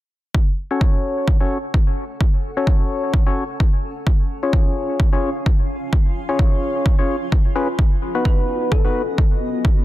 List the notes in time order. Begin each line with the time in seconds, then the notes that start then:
0.34 C#4, kick
0.49 A4
0.58 F#5
0.71 C#4 F#4 A4 C#5
0.81 kick
1.28 kick
1.40 C#4 F#4 A4 C#5 A5
1.74 kick
2.21 kick
2.57 C#4 F#4 A4 C#5
2.67 kick
3.14 kick
3.27 C#4 F#4 A4 C#5
3.60 kick
4.07 kick
4.19 F5 G#5
4.34 F4
4.43 C#4 F4 G#4 C#5
4.53 kick
5.00 kick
5.13 C#4 F4 G#4 C#5
5.46 kick
5.93 kick
6.29 C#4 F4 G#4 C#5
6.39 kick
6.86 kick
6.99 C#4 F4 G#4 C#5
7.32 kick
7.55 C#4 F4 G#4 B4
7.79 B3, kick
7.97 F#4
8.09 D#5
8.15 B3 D#4 F#4 B4
8.25 B4, kick
8.46 B5
8.72 A4, kick
8.85 B3 D#4 F#4 B4
9.18 kick
9.65 kick